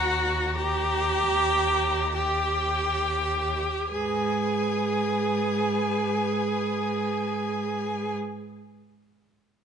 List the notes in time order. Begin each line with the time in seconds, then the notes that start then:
Already playing: D#2 F#4 F#5 A#5
0.55 G4 G5 A#5
2.14 G4 G5
3.91 G#2 G#4 B4 G#5